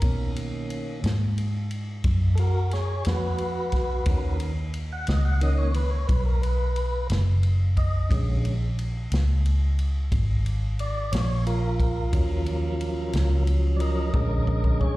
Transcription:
0.00 1.01 B2 medium
0.00 1.00 D#3 medium
0.00 1.00 A#3 soft
0.00 1.00 C#4 medium
0.00 0.32 A#4 loud
0.00 kick loud
0.00 ride medium
0.36 ride medium
0.70 ride medium
1.04 2.02 G#2 loud
1.04 snare loud
1.04 ride medium
1.38 ride medium
1.71 ride medium
2.04 3.03 F#2 medium
2.04 kick loud
2.04 ride medium
2.35 2.39 A4 medium
2.35 ride medium
2.39 2.71 F#4 medium
2.39 2.72 A#4 loud
2.71 3.04 G#4 medium
2.71 3.06 C#5 medium
2.71 snare soft
2.71 ride medium
3.05 4.04 F2 medium
3.05 4.37 F#4 medium
3.05 4.37 B4 loud
3.05 snare loud
3.05 ride medium
3.38 ride medium
3.72 kick medium
3.72 snare soft
3.72 ride medium
4.06 5.05 D#2 medium
4.06 4.52 D#3 soft
4.06 4.53 C#4 soft
4.06 4.53 A#4 soft
4.06 kick loud
4.06 ride medium
4.40 ride medium
4.74 ride medium
4.93 5.08 F#5 loud
5.07 6.06 C#2 loud
5.07 5.24 D#5 medium
5.07 snare loud
5.07 ride medium
5.25 5.41 F#5 loud
5.41 5.72 D#3 medium
5.41 5.72 A#3 soft
5.41 5.73 C#4 medium
5.41 5.58 D#5 loud
5.41 ride medium
5.58 5.74 C#5 loud
5.74 5.91 B4 loud
5.74 ride medium
5.90 6.07 C#5 medium
6.07 7.07 B1 medium
6.07 6.24 B4 loud
6.07 kick loud
6.07 ride medium
6.25 6.41 A#4 loud
6.41 7.07 B4 loud
6.41 ride medium
6.76 ride medium
7.10 8.08 F#1 medium
7.10 snare loud
7.10 ride medium
7.43 ride medium
7.77 8.10 D#5 loud
7.77 kick medium
7.77 ride medium
8.09 9.09 A#1 medium
8.09 8.55 D3 medium
8.09 8.55 G#3 soft
8.09 8.55 C#4 medium
8.09 kick loud
8.09 ride loud
8.45 ride medium
8.79 ride medium
9.12 10.09 C#2 medium
9.12 snare loud
9.12 ride medium
9.46 ride medium
9.79 ride medium
10.12 11.10 G#1 medium
10.12 kick loud
10.12 ride medium
10.46 ride medium
10.79 11.12 D5 loud
10.79 ride medium
11.12 12.10 A#1 loud
11.12 11.45 C#5 loud
11.12 snare loud
11.12 ride loud
11.47 13.43 F4 medium
11.47 13.43 A#4 loud
11.47 ride medium
11.80 kick medium
11.80 ride medium
12.11 13.11 D#2 medium
12.11 14.09 F3 medium
12.11 14.10 F#3 soft
12.11 14.10 C#4 medium
12.11 kick loud
12.11 ride loud
12.46 ride medium
12.81 ride medium
13.13 14.11 C#2 medium
13.13 snare loud
13.13 ride medium
13.47 ride medium
13.76 13.81 D5 medium
13.76 ride medium
13.81 14.12 A#4 medium
13.81 14.14 D#5 loud
14.14 14.97 A#1 medium
14.14 14.97 D3 medium
14.14 14.97 G#3 medium
14.14 14.97 C#4 medium
14.14 14.45 A#4 medium
14.14 14.47 D#5 loud
14.14 kick loud
14.47 14.79 A#4 medium
14.47 14.81 D#5 medium
14.47 kick medium
14.64 kick medium
14.80 14.97 G#4 medium
14.80 14.97 C#5 medium
14.80 kick medium

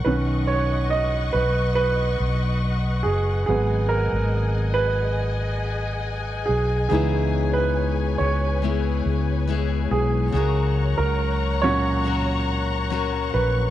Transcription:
0.00 6.87 F#5 soft
0.05 1.30 B1 medium
0.05 3.44 D#3 soft
0.05 3.45 B3 soft
0.05 3.45 C#4 soft
0.05 0.14 B4 medium
0.05 3.45 B4 soft
0.05 3.45 D#5 soft
0.05 3.45 C#6 medium
0.47 0.92 C#5 medium
0.90 1.35 D#5 medium
1.33 2.16 B1 medium
1.33 1.74 B4 medium
1.75 3.09 B4 medium
2.20 3.02 B1 medium
3.03 3.45 F#1 medium
3.03 3.45 G#4 medium
3.46 4.09 G#1 medium
3.46 6.87 F#3 soft
3.46 6.88 G#3 soft
3.46 6.88 B3 soft
3.46 3.92 G#4 medium
3.46 10.30 G#4 medium
3.46 6.88 D#5 soft
3.46 10.30 G#5 medium
3.89 4.78 A#4 medium
4.12 6.44 G#1 medium
4.74 6.52 B4 medium
6.46 6.88 B1 medium
6.46 6.87 G#4 medium
6.89 8.16 C#2 medium
6.89 8.62 C#3 medium
6.89 8.16 E3 soft
6.89 8.61 G#3 medium
6.89 8.16 B3 soft
6.89 8.62 B3 medium
6.89 8.16 D#4 soft
6.89 7.56 G#4 medium
6.89 10.30 B4 soft
6.89 10.31 C#5 soft
6.93 8.63 E4 medium
6.93 8.64 G#4 medium
7.53 8.21 B4 medium
8.18 9.02 C#2 medium
8.18 9.01 C#5 medium
8.62 9.46 G#3 soft
8.62 9.47 B3 soft
8.62 9.48 E4 soft
8.62 9.49 G#4 soft
9.05 9.87 C#2 medium
9.47 10.34 G#3 soft
9.47 10.34 B3 medium
9.47 10.35 E4 medium
9.47 10.35 G#4 medium
9.91 10.31 B1 medium
9.91 10.32 G#4 medium
10.32 10.94 C#2 medium
10.32 12.05 C#3 medium
10.32 12.04 F#3 medium
10.32 12.05 C#4 medium
10.32 12.06 F#4 medium
10.32 10.94 G#4 medium
10.32 13.70 C#5 soft
10.32 13.70 F#5 soft
10.32 13.70 A#5 medium
10.32 13.70 C#6 medium
10.37 12.06 A#4 medium
10.98 13.30 C#2 medium
10.98 11.64 A#4 medium
11.62 13.70 A#2 soft
11.62 13.70 F#3 soft
11.62 13.70 C#4 soft
11.62 12.44 C#5 medium
12.04 12.90 F#3 soft
12.04 12.91 C#4 medium
12.04 12.92 F#4 medium
12.04 12.92 A#4 medium
12.90 13.70 F#3 medium
12.90 13.70 C#4 soft
12.90 13.70 F#4 medium
12.90 13.70 A#4 medium
13.34 13.70 A#1 medium
13.34 13.44 B4 medium

